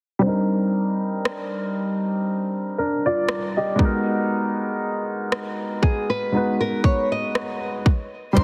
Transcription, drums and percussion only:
1.25 cross-stick loud
3.29 cross-stick loud
3.79 kick loud
5.32 cross-stick loud
5.83 kick medium
6.84 kick medium
7.35 cross-stick loud
7.86 kick loud
8.37 kick loud
8.37 closed hi-hat medium

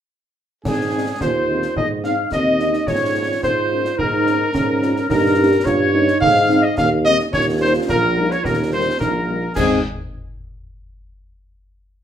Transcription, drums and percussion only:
0.65 concert bass drum medium
0.65 snare medium
0.65 crash soft
1.21 concert bass drum medium
1.21 snare medium
1.62 snare soft
1.76 concert bass drum medium
2.04 snare medium
2.32 concert bass drum medium
2.32 snare medium
2.60 snare medium
2.73 snare soft
2.87 concert bass drum medium
2.87 snare medium
3.43 concert bass drum medium
3.43 snare medium
3.85 snare soft
3.99 concert bass drum medium
4.27 snare soft
4.55 concert bass drum medium
4.55 snare medium
4.82 snare medium
4.96 snare soft
5.10 concert bass drum medium
5.10 snare medium
5.10 crash soft
5.66 concert bass drum medium
5.66 snare medium
6.08 snare medium
6.22 concert bass drum medium
6.50 snare soft
6.78 concert bass drum medium
6.78 snare medium
7.05 snare medium
7.19 snare medium
7.33 concert bass drum medium
7.33 snare medium
7.89 concert bass drum medium
7.89 snare medium
8.31 snare soft
8.45 concert bass drum medium
8.45 snare medium
9.01 concert bass drum medium
9.01 snare medium
9.56 concert bass drum medium
9.56 snare medium
9.56 crash medium

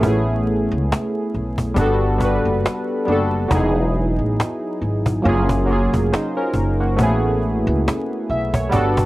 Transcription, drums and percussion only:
0.03 cajon bass loud
0.47 cajon slap soft
0.92 cajon slap loud
0.92 cajon slap medium
1.34 cajon slap soft
1.58 cajon bass medium
1.76 cajon bass loud
2.21 cajon bass loud
2.21 cajon slap soft
2.66 cajon slap loud
2.66 cajon slap medium
2.88 cajon slap soft
3.08 cajon slap soft
3.51 cajon bass loud
3.94 cajon slap soft
4.40 cajon slap loud
4.40 cajon slap medium
4.82 cajon slap soft
5.06 cajon bass medium
5.25 cajon slap soft
5.49 cajon bass loud
5.69 cajon slap soft
5.70 cajon slap soft
5.94 cajon bass medium
6.14 cajon slap loud
6.35 cajon slap soft
6.54 cajon bass medium
6.99 cajon bass loud
7.42 cajon slap soft
7.88 cajon slap loud
7.88 cajon slap medium
8.30 cajon slap soft
8.54 cajon bass loud
8.72 cajon bass loud
8.97 cajon bass loud

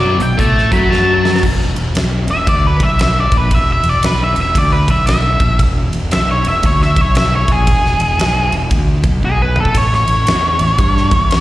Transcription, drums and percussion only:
0.20 closed hi-hat medium
0.39 kick loud
0.39 closed hi-hat medium
0.58 snare soft
0.72 kick loud
0.72 closed hi-hat medium
0.92 snare medium
1.25 snare medium
1.36 snare medium
1.43 kick loud
1.43 crash loud
1.61 snare soft
1.76 ride medium
1.95 snare loud
1.95 ride medium
2.28 ride medium
2.47 kick medium
2.47 ride medium
2.80 kick loud
2.80 ride medium
2.99 snare medium
2.99 ride medium
3.32 kick loud
3.32 ride medium
3.51 kick loud
3.51 ride medium
3.83 ride medium
4.03 snare loud
4.03 ride medium
4.36 ride medium
4.55 kick loud
4.55 ride medium
4.88 kick loud
4.88 ride medium
5.07 snare loud
5.07 ride medium
5.40 kick loud
5.40 ride medium
5.59 kick loud
5.59 ride medium
5.93 ride medium
6.11 snare loud
6.11 ride medium
6.45 ride medium
6.63 kick medium
6.63 ride medium
6.82 snare soft
6.96 kick loud
6.96 ride medium
7.15 snare loud
7.15 ride medium
7.48 kick loud
7.48 ride medium
7.67 kick loud
7.67 ride medium
7.86 snare soft
8.00 ride medium
8.19 snare loud
8.19 ride medium
8.52 ride medium
8.71 kick loud
8.71 ride medium
9.04 kick loud
9.04 ride medium
9.23 kick medium
9.56 mid tom medium
9.65 kick medium
9.75 kick loud
9.75 ride loud
9.93 snare soft
10.08 ride medium
10.27 snare loud
10.27 ride medium
10.59 ride medium
10.78 kick loud
10.78 ride medium
10.97 snare soft
11.11 kick loud
11.11 ride medium
11.31 snare medium
11.31 ride medium

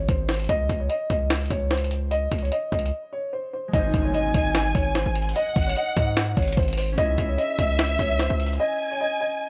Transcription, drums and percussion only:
0.09 kick loud
0.09 closed hi-hat medium
0.29 snare medium
0.29 closed hi-hat medium
0.34 closed hi-hat medium
0.40 closed hi-hat medium
0.44 closed hi-hat medium
0.49 kick loud
0.49 closed hi-hat medium
0.69 kick loud
0.69 closed hi-hat medium
0.90 closed hi-hat medium
1.10 kick loud
1.10 closed hi-hat medium
1.30 snare loud
1.30 closed hi-hat medium
1.36 closed hi-hat medium
1.41 closed hi-hat medium
1.46 closed hi-hat medium
1.50 kick medium
1.50 closed hi-hat medium
1.71 snare medium
1.71 closed hi-hat soft
1.78 closed hi-hat medium
1.84 closed hi-hat medium
1.91 closed hi-hat medium
2.11 closed hi-hat medium
2.32 kick medium
2.32 closed hi-hat medium
2.38 closed hi-hat medium
2.45 closed hi-hat soft
2.52 closed hi-hat medium
2.72 kick medium
2.72 closed hi-hat soft
2.79 closed hi-hat medium
2.86 closed hi-hat medium
3.74 kick loud
3.74 closed hi-hat medium
3.94 kick loud
3.94 closed hi-hat medium
4.14 closed hi-hat medium
4.34 kick loud
4.34 closed hi-hat medium
4.55 snare loud
4.55 closed hi-hat medium
4.75 kick loud
4.75 closed hi-hat medium
4.95 snare medium
4.95 closed hi-hat medium
5.15 closed hi-hat medium
5.22 closed hi-hat medium
5.29 closed hi-hat medium
5.36 closed hi-hat medium
5.56 kick loud
5.56 closed hi-hat soft
5.63 closed hi-hat medium
5.69 closed hi-hat medium
5.76 closed hi-hat medium
5.97 kick loud
5.97 closed hi-hat medium
6.17 snare loud
6.17 closed hi-hat medium
6.37 kick medium
6.37 closed hi-hat soft
6.42 closed hi-hat medium
6.48 closed hi-hat medium
6.53 closed hi-hat medium
6.57 kick loud
6.57 closed hi-hat soft
6.63 closed hi-hat medium
6.68 closed hi-hat medium
6.73 closed hi-hat medium
6.78 open hi-hat medium
6.98 kick loud
6.98 closed hi-hat medium
7.18 kick loud
7.18 closed hi-hat medium
7.38 closed hi-hat medium
7.59 kick loud
7.59 closed hi-hat medium
7.79 snare loud
7.79 closed hi-hat medium
7.99 kick medium
7.99 closed hi-hat medium
8.19 snare medium
8.19 closed hi-hat medium
8.40 closed hi-hat medium
8.46 closed hi-hat medium
8.53 closed hi-hat medium

